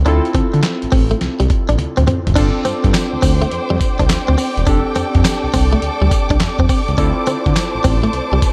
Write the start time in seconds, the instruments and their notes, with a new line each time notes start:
0.05 analog synth bass D2, synth keys C4 E4 F4 A4, clean electric guitar D4, closed hi-hat
0.25 closed hi-hat
0.34 analog synth bass D3, clean electric guitar C4, kick, closed hi-hat
0.54 analog synth bass D3, muted clean electric guitar stroke, closed hi-hat
0.63 muted clean electric guitar stroke, snare, clap, closed hi-hat
0.82 analog synth bass A1, closed hi-hat
0.92 analog synth bass A1, clean electric guitar C4, kick, open hi-hat
1.11 clean electric guitar A3, closed hi-hat
1.21 analog synth bass C2, snare, closed hi-hat
1.40 analog synth bass C2, clean electric guitar G3, closed hi-hat
1.50 muted clean electric guitar stroke, kick, closed hi-hat
1.69 analog synth bass A1, clean electric guitar D4, closed hi-hat
1.78 analog synth bass D2, muted clean electric guitar stroke, closed hi-hat, high tom
1.97 analog synth bass D2, clean electric guitar C4, closed hi-hat, mid tom
2.07 clean electric guitar C4, closed hi-hat, mid tom
2.27 analog synth bass F#1, closed hi-hat, floor tom
2.36 analog synth bass G1, synth keys C4 D4 F4 A4, clean electric guitar D4, string section C5 D5 G5 D6, kick, closed hi-hat, crash, tambourine
2.65 analog synth bass G2, clean electric guitar C4, closed hi-hat, tambourine
2.84 analog synth bass G2, muted clean electric guitar stroke, kick, closed hi-hat
2.93 muted clean electric guitar stroke, snare, clap, closed hi-hat, tambourine
3.13 analog synth bass D2
3.22 analog synth bass D2, clean electric guitar C4, kick, open hi-hat, tambourine
3.42 clean electric guitar A3, closed hi-hat
3.51 analog synth bass F2, closed hi-hat
3.70 analog synth bass F2, clean electric guitar G3
3.80 muted clean electric guitar stroke, kick, closed hi-hat, tambourine
3.99 analog synth bass C2, clean electric guitar D4, kick, closed hi-hat
4.09 analog synth bass D2, muted clean electric guitar stroke, snare, clap, closed hi-hat, tambourine
4.28 analog synth bass D2, clean electric guitar C4
4.38 clean electric guitar C4, open hi-hat, tambourine
4.57 analog synth bass E1, closed hi-hat
4.67 analog synth bass F1, synth keys C4 D4 G4 A4, clean electric guitar D4, string section A4, kick, closed hi-hat, tambourine
4.95 analog synth bass F2, clean electric guitar C4, closed hi-hat, tambourine
5.15 analog synth bass F2, muted clean electric guitar stroke, kick, closed hi-hat
5.25 muted clean electric guitar stroke, snare, clap, closed hi-hat, tambourine
5.44 analog synth bass C2
5.54 analog synth bass C2, clean electric guitar C4, kick, open hi-hat, tambourine
5.73 clean electric guitar A3, closed hi-hat
5.82 analog synth bass D2, closed hi-hat
6.01 analog synth bass D2, clean electric guitar G3
6.11 muted clean electric guitar stroke, kick, closed hi-hat, tambourine
6.30 analog synth bass C2, clean electric guitar D4, kick, closed hi-hat
6.40 analog synth bass F2, muted clean electric guitar stroke, snare, clap, closed hi-hat, tambourine
6.59 analog synth bass F2, clean electric guitar C4, kick
6.69 clean electric guitar C4, kick, open hi-hat, tambourine
6.88 analog synth bass C#2, closed hi-hat
6.97 analog synth bass D2, synth keys C4 E4 F4 A4, clean electric guitar D4, string section C5 A5, kick, closed hi-hat, tambourine
7.26 analog synth bass D3, clean electric guitar C4, closed hi-hat, tambourine
7.46 analog synth bass D3, muted clean electric guitar stroke, kick, closed hi-hat
7.56 muted clean electric guitar stroke, snare, clap, closed hi-hat, tambourine
7.75 analog synth bass A1
7.84 analog synth bass A1, clean electric guitar C4, kick, open hi-hat, tambourine
8.03 clean electric guitar A3, closed hi-hat
8.13 analog synth bass C2, closed hi-hat
8.32 analog synth bass C2, clean electric guitar G3
8.42 muted clean electric guitar stroke, kick, closed hi-hat, tambourine